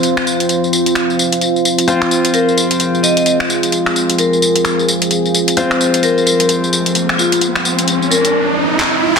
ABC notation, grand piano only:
X:1
M:4/4
L:1/8
Q:"Swing 16ths" 1/4=130
K:Fm
V:1 name="Grand piano"
[CFc]8 | [CFc]8- | [CFc]8 | [CFc]8- |
[CFc]4 z4 |]